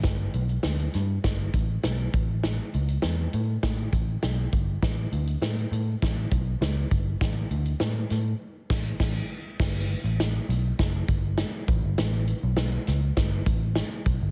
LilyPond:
<<
  \new Staff \with { instrumentName = "Picked electric bass" } { \clef bass \time 4/4 \key g \lydian \tempo 4 = 101 g,,8 b,,8 d,8 g,8 g,,8 a,,8 b,,8 a,,8~ | a,,8 cis,8 e,8 a,8 a,8 a,,8 b,,8 g,,8 | a,,8 d,8 a,8 a,8 a,,8 b,,8 cis,8 g,,8 | a,,8 d,8 a,8 a,8 r8 a,,8 a,,8 r8 |
g,,8. a,,8. b,,8 fis,,8 g,,8. r16 a,,16 g,,16 | a,,8. b,,8. cis,8 g,,8 a,,8. r16 b,,16 g,,16 | }
  \new DrumStaff \with { instrumentName = "Drums" } \drummode { \time 4/4 <hh bd sn>8 hh16 hh16 <hh sn>16 hh16 <hh sn>8 <hh bd sn>8 <hh bd>8 <hh sn>8 <hh bd>8 | <hh sn>8 hh16 hh16 <hh sn>8 hh8 <hh bd sn>8 <hh bd>8 <hh sn>8 <hh bd>8 | <hh bd sn>8 hh16 hh16 <hh sn>16 hh16 hh8 <hh bd sn>8 <hh bd>8 <hh sn>8 <hh bd>8 | <hh bd sn>8 hh16 hh16 <hh sn>8 <hh sn>8 r8 <cymc bd sn>8 <cymc bd sn>4 |
<cymc bd sn>8 hh16 hh16 <hh sn>8 hh8 <hh bd sn>8 <hh bd>8 <hh sn>8 <hh bd>8 | <hh sn>8 hh8 <hh sn>8 <hh sn>8 <hh bd sn>8 <hh bd>8 <hh sn>8 <hh bd>8 | }
>>